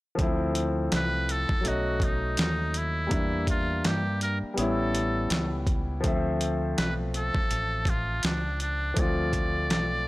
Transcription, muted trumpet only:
0.96 B4
1.31 A4
1.68 F#4
2.04 D#4
2.40 D#4
2.78 E4
3.50 F4
3.87 G4
4.23 A#4
4.59 A4
6.78 B4
7.16 A4
7.90 F4
8.25 D4
8.62 D4
9.00 D5

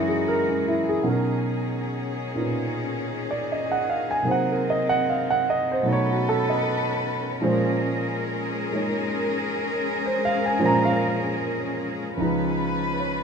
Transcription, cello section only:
Already playing: E3 G#3 D#4 F#4 G#4
1.01 D#3 C#4
4.24 C4
5.84 C#4 A4 B4
7.41 G#3 G#4 A#4
12.18 F3 B4

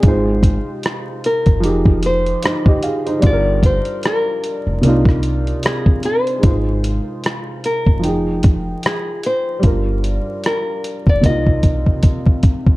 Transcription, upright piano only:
0.01 G#3 D#4
0.06 F4 C5
1.60 F3 D#4
1.65 G4 G#4
2.44 D#4 C5
2.67 G4 D#5
2.84 G#4 F5
3.06 D#4 C5
3.19 G3 D4
3.24 F4 G#4
3.33 A#4
4.81 C3 A#3 D4
4.86 D#4 F4
6.38 G#3 D#4
6.43 F4 C5
7.99 F3 D#4
8.04 G#4 G5
9.59 G3 D4
9.64 F4 A#4
11.21 C3 A#3 C4
11.26 D#4 F4

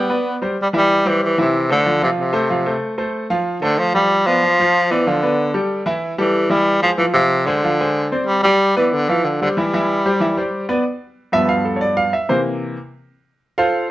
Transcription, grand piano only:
0.10 B3 B4 D5
0.42 G3 G4 C5
0.73 E3 E4 E5
1.05 G3 G4 C5
1.38 E3 E4 E5
1.70 A3 A4 C5
1.86 F3 F4 F5
2.02 F3 F4 F5
2.33 A3 A4 C5
2.50 F3 F4 F5
2.66 A3 A4 C5
2.98 A3 A4 C5
3.30 F3 F4 F5
3.62 A3 A4 C5
3.95 F3 F4 F5
4.27 B3 B4 D5
4.43 F3 F4 F5
4.59 F3 F4 F5
4.91 B3 B4 D5
5.07 F3 F4 F5
5.23 B3 B4 D5
5.54 G3 G4 A4
5.86 E3 E4 E5
6.18 G3 G4 A4
6.50 E3 E4 E5
6.83 G#3 G#4 C5
6.98 F3 F4 F5
7.15 F3 F4 F5
7.47 G#3 G#4 C5
7.64 F3 F4 F5
7.80 G#3 G#4 C5
8.12 C4 C5 D5
8.45 G3 G4 G5
8.76 B3 B4 D5
9.09 F3 F4 F5
9.41 G3 G4 C5
9.57 E3 E4 E5
9.73 E3 E4 E5
10.06 G3 G4 C5
10.20 E3 E4 E5
10.37 G3 G4 C5
10.69 B3 B4 D5
11.32 G2 F3 B3 E5
11.49 F5
11.65 A4
11.76 C#5
11.81 D5
11.97 F5
12.13 E5
12.29 C3 E3 A#3 C5
13.58 F4 A4 C5 F5

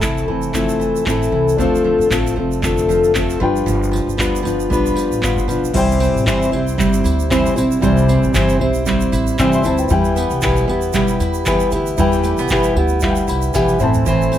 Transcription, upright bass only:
0.01 C2
0.28 F1
1.06 A1
1.32 C2
1.58 D2
1.98 F2
2.10 A1
2.37 F1
3.41 G1
3.67 G1
4.07 G1
4.19 D2
4.44 G1
4.71 B1
4.97 muted upright bass stroke
5.11 A1
5.36 G1
5.48 B1
5.75 C2
6.14 A1
6.27 G1
6.53 C2
6.79 G1
7.04 D2
7.56 B1
7.83 C2
8.23 A1
8.35 G1
8.60 B1
9.12 A1
9.39 G1
9.65 D2
9.91 E2
10.31 C2
10.43 B1
10.68 E2
10.94 B1
11.20 E2
11.72 D2
11.98 E2
12.38 C2
12.51 B1
12.76 D2
13.28 C2
13.54 B1
13.81 A1

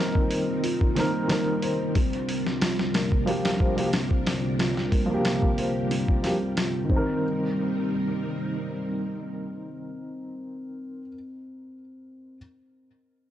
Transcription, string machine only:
Already playing: G3 C4 D#4 A#4
1.95 C3 D4 F4 A#4
4.59 G4
6.90 G3 C4 D#4 A#4

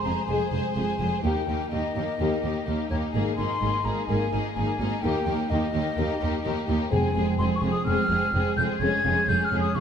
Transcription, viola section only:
0.05 G#3
0.29 G#3
0.52 G#3
0.75 G#3
1.00 G#3
1.23 A#3
1.48 A#3
1.72 A#3
1.96 A#3
2.20 A#3
2.43 A#3
2.66 A#3
2.91 A#3
3.15 A#3
3.38 A#3
3.63 A#3
3.85 A#3
4.09 A#3
4.32 A#3
4.56 A#3
4.80 A#3
5.03 A#3
5.27 A#3
5.51 A#3
5.73 A#3
5.98 A#3
6.22 A#3
6.46 A#3
6.68 A#3
6.92 G#3
7.16 G#3
7.39 G#3
7.62 G#3
7.86 G#3
8.09 G#3
8.34 G#3
8.58 G#3
8.82 G#3
9.05 G#3
9.28 G#3
9.52 G#3
9.75 G#3

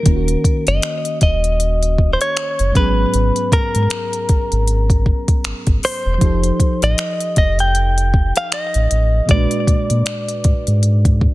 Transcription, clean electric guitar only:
Already playing: A#4
0.68 D#5
1.23 D#5
2.13 C5
2.22 C#5
2.77 B4
3.53 A#4
5.85 C5
6.84 D#5
7.38 D#5
7.60 G5
8.37 F5
8.53 D#5
9.31 D5

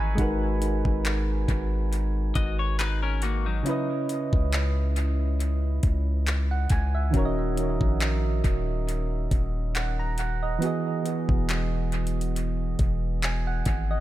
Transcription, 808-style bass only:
Already playing: G#1
0.18 G#1
0.85 G#1
1.49 G#1
2.36 G#1
4.33 C#2
5.83 C#2
6.70 C#2
7.14 D#1
7.81 A#1
8.44 D#1
9.31 D#1
11.29 E1
12.79 E1
13.66 G#1

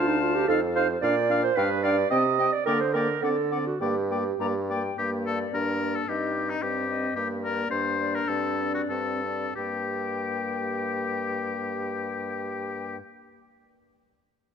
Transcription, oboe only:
Already playing: F5
0.49 F5
0.76 F5
1.04 F5
1.31 F5
1.57 F5
1.84 F5
2.11 D#5
2.39 D#5
2.67 D5
2.96 D5
3.24 D5
3.52 D5
3.81 D5
4.11 D5
4.41 D5
4.70 D5
4.98 G4
5.26 A4
5.54 A#4
5.95 A4
6.08 G4
6.50 D#4
6.62 G4
7.16 G4
7.43 A#4
7.71 C5
8.15 A#4
8.28 A4
8.74 F#4
8.90 A4
9.55 G4

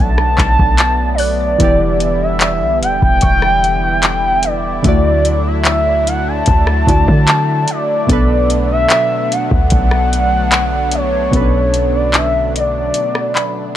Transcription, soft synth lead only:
0.00 A5
1.14 C#5
1.21 D5
2.23 E5
2.83 G5
3.03 G5
4.45 D5
5.47 E5
6.08 F#5
6.28 A5
7.70 D5
8.71 E5
9.32 F#5
9.53 F#5
10.95 C#5
11.96 D5
12.16 E5
12.57 D5

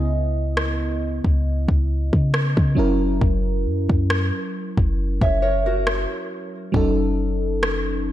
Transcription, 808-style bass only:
Already playing: C#2
1.25 C#2
1.68 C#2
2.13 C#3
2.57 C#3
2.78 F#1
3.21 F#1
3.66 F#2
3.90 F#2
4.77 F#1
5.21 F#1
6.74 F#1

